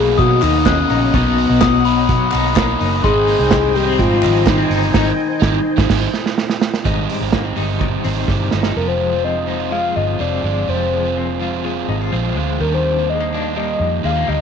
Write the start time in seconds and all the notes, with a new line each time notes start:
Already playing: B1 B2 F#3 A#3 D#4 G#4 D#5 F#5 B5
0.18 B2 F#3 F#4 D#6, kick, closed hi-hat
0.41 D#2 B2 F#3 A#3 D#4, clap, open hi-hat
0.65 B2 F#3 A#3 C#4 D#4 F#6, kick, snare, clap, closed hi-hat
0.90 A#1 C#4 D#4, open hi-hat
1.13 B1 B2 F#3 B3 D#4, kick, closed hi-hat
1.38 open hi-hat
1.49 B1 F#3 D#4
1.61 F#3 D#6, kick, snare, clap, closed hi-hat
1.84 B2 F#3 D#4 B5, open hi-hat
2.09 B2 F#3, kick, closed hi-hat
2.32 B1 B2 F#3 A#3 D#4, clap, open hi-hat
2.56 B2 F#3 A#3 D#4, kick, snare, clap, closed hi-hat
2.80 F#1 D#4, open hi-hat
3.04 G#1 G#2 D#3 C4 D#4 G#4 D#5 G5 G#5 C6, kick, closed hi-hat
3.27 A#3, open hi-hat
3.39 C2 C4 D#4
3.51 G3, kick, snare, clap, closed hi-hat
3.75 D#3 G3 A#3 C4 D#4 G4, open hi-hat
3.87 C4
3.99 G#2 G3 F4, kick, closed hi-hat
4.22 G#1 D#3 G3 C4 D#4, clap, open hi-hat
4.46 D#3 G3 A#3 C4 D#4, kick, snare, clap, closed hi-hat
4.58 C4
4.70 G1 D#4, open hi-hat
4.94 G#1 G#2 D#3 G3 C4 D#4, kick, snare, crash
5.40 G#1 G3 C4 D#4, kick, snare
5.77 G#1 D#3 G3 C4 D#4, kick, snare
5.89 G#1 D#3 G3 C4 D#4, kick, snare, crash
6.14 snare
6.26 snare
6.38 snare
6.50 snare
6.61 snare
6.74 snare
6.84 G#1 G#2 D#3 G3 C4 D#4, kick, closed hi-hat
7.09 G3, open hi-hat
7.20 G#1 G3 C4 D#4
7.32 A#3, kick, snare, closed hi-hat
7.45 C4
7.56 G1 D#3 G3 C4 D#4, open hi-hat
7.80 D#3, kick, closed hi-hat
8.04 G#1 D#3 G3 C4 D#4, open hi-hat
8.28 G1 D#3 G3 C4 D#4, kick, snare
8.51 G1 D#4, snare
8.63 G3 C4 D#4, snare
8.76 F1 F3 G#3 C4 F4 A#4
8.88 C5
9.00 G#3
9.11 G#3 C4 F4
9.24 C4 D#5
9.47 F3 G#3 C4 D#4 F4
9.60 F4
9.71 F3 G#3 C4 F4 F5
9.96 G1 F4 D#5
10.19 F1 F3 G#3 C4 F4 D5
10.42 G1 F3 G#3 C4 F4
10.67 F1 F3 G#3 C4 F4 C5
10.93 G#3
11.04 G#3 C4 F4
11.17 C4
11.40 F3 G#3 C4 F4
11.63 F3 G#3 C4 F4
11.88 G#1 D#4
12.01 F4
12.12 A#1 F3 G#3 C4 F4
12.36 D2 F3 G#3 C4 F4
12.59 D#2 D#3 G3 A#3 D4 A#4
12.74 C5
12.85 G3
12.96 G3 A#3 D4
13.09 G#3 D#5
13.20 A#3
13.33 D#3 G3 A#3 D4
13.55 D#3 G3 A#3 D#5
13.80 F2
14.03 D#2 D#3 G3 G#3 A#3 D4 F5
14.15 A#3
14.27 D2 D#3 G3 A#3 D4 D#5